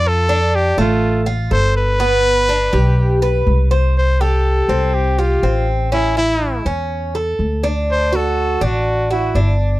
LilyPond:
<<
  \new Staff \with { instrumentName = "Trumpet" } { \time 4/4 \key c \major \tempo 4 = 122 a'4 g'8 f'4 r8 c''8 b'8~ | b'2. r4 | c''8 a'4. g'8 f'4 r8 | e'8 e'4 r2 r8 |
c''8 a'4 fis'4 e'4 r8 | }
  \new Staff \with { instrumentName = "Cuban tres" } { \time 4/4 \key c \major f'8 d'4 a4 f'8 a'4 | b4 d'8 g'4 b'4 c''8 | r8 g'4 c'4 g'8 c'4 | cis'8 e'4 cis'4 a'4 d'8~ |
d'8 fis'4 d'4 fis'8 d'4 | }
  \new Staff \with { instrumentName = "Upright bass" } { \clef bass \time 4/4 \key c \major f,4. a,,4. g,,4~ | g,,4. b,,4. c,4~ | c,4. c,4. a,,4~ | a,,4. e,4. d,4~ |
d,4. a,,4. g,,4 | }
>>